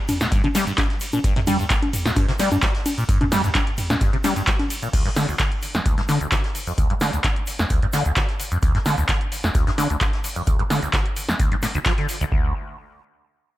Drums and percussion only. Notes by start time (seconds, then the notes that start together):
0.08 closed hi-hat, mid tom, open hi-hat, ride, high conga, shaker
0.21 snare, closed hi-hat, shaker
0.32 kick, closed hi-hat, shaker
0.44 closed hi-hat, high conga
0.54 snare, closed hi-hat, open hi-hat, ride, shaker
0.67 closed hi-hat, shaker
0.78 kick, snare, clap, closed hi-hat, high conga, shaker
0.90 snare, closed hi-hat
1.00 closed hi-hat, open hi-hat, ride, shaker
1.13 closed hi-hat, high conga, shaker
1.24 kick, closed hi-hat, shaker
1.36 snare, closed hi-hat, mid tom
1.47 closed hi-hat, mid tom, open hi-hat, ride, high conga, shaker
1.59 closed hi-hat, shaker
1.69 kick, snare, clap, closed hi-hat, shaker
1.82 closed hi-hat, high conga
1.93 closed hi-hat, mid tom, open hi-hat, ride, shaker
2.06 snare, closed hi-hat, shaker
2.16 kick, closed hi-hat, high conga, shaker
2.28 snare, closed hi-hat
2.39 snare, closed hi-hat, open hi-hat, ride, shaker
2.52 closed hi-hat, high conga, shaker
2.62 kick, snare, clap, closed hi-hat, shaker
2.75 snare, closed hi-hat
2.86 open hi-hat, ride, high conga, shaker
2.98 closed hi-hat, shaker
3.09 kick, closed hi-hat, shaker
3.21 closed hi-hat, mid tom, high conga
3.31 snare, closed hi-hat, mid tom, open hi-hat, ride, shaker
3.44 closed hi-hat, shaker
3.54 kick, snare, clap, closed hi-hat, high conga, shaker
3.67 closed hi-hat
3.78 closed hi-hat, mid tom, open hi-hat, ride, shaker
3.90 snare, closed hi-hat, high conga, shaker
4.01 kick, closed hi-hat, shaker
4.13 closed hi-hat
4.24 snare, closed hi-hat, open hi-hat, ride, high conga, shaker
4.36 closed hi-hat, shaker
4.47 kick, snare, clap, closed hi-hat, shaker
4.59 snare, closed hi-hat, high conga
4.70 closed hi-hat, open hi-hat, ride, shaker
4.82 closed hi-hat, shaker
4.93 kick, closed hi-hat, crash, shaker
5.06 snare, closed hi-hat
5.16 snare, closed hi-hat, open hi-hat, shaker
5.29 closed hi-hat, shaker
5.39 kick, snare, clap, closed hi-hat, shaker
5.52 closed hi-hat
5.62 closed hi-hat, open hi-hat, shaker
5.74 snare, closed hi-hat, shaker
5.86 kick, closed hi-hat, shaker
5.98 snare, closed hi-hat
6.08 snare, closed hi-hat, open hi-hat, shaker
6.21 closed hi-hat, shaker
6.32 kick, snare, clap, closed hi-hat, shaker
6.44 snare, closed hi-hat
6.55 open hi-hat, shaker
6.67 closed hi-hat, shaker
6.78 kick, closed hi-hat, shaker
6.90 closed hi-hat
7.01 snare, closed hi-hat, open hi-hat, shaker
7.13 closed hi-hat, shaker
7.24 kick, snare, clap, closed hi-hat, shaker
7.36 closed hi-hat
7.47 closed hi-hat, open hi-hat, shaker
7.59 snare, closed hi-hat, shaker
7.70 kick, closed hi-hat, shaker
7.82 closed hi-hat
7.93 snare, closed hi-hat, open hi-hat, shaker
8.05 closed hi-hat, shaker
8.16 kick, snare, clap, closed hi-hat, shaker
8.28 snare, closed hi-hat
8.39 closed hi-hat, open hi-hat, shaker
8.52 closed hi-hat, shaker
8.62 kick, closed hi-hat, shaker
8.75 snare, closed hi-hat
8.86 snare, closed hi-hat, open hi-hat, shaker
8.98 closed hi-hat, shaker
9.08 kick, snare, clap, closed hi-hat, shaker
9.21 closed hi-hat
9.32 closed hi-hat, open hi-hat, shaker
9.44 snare, shaker
9.55 kick, closed hi-hat, shaker
9.67 snare, closed hi-hat
9.77 snare, closed hi-hat, open hi-hat, shaker
9.90 closed hi-hat, shaker
10.00 kick, snare, clap, closed hi-hat, shaker
10.13 snare, closed hi-hat
10.24 open hi-hat, shaker
10.36 closed hi-hat, shaker
10.47 kick, closed hi-hat, shaker
10.59 closed hi-hat
10.70 snare, closed hi-hat, open hi-hat, shaker
10.82 closed hi-hat, shaker
10.93 kick, snare, clap, closed hi-hat, shaker
11.06 closed hi-hat
11.16 closed hi-hat, open hi-hat, shaker
11.29 snare, closed hi-hat, shaker
11.39 kick, closed hi-hat, shaker
11.52 closed hi-hat
11.62 snare, closed hi-hat, open hi-hat, shaker
11.75 closed hi-hat, shaker
11.85 kick, snare, clap, closed hi-hat, shaker
11.98 snare, closed hi-hat
12.09 closed hi-hat, open hi-hat, shaker
12.21 closed hi-hat, shaker
12.32 kick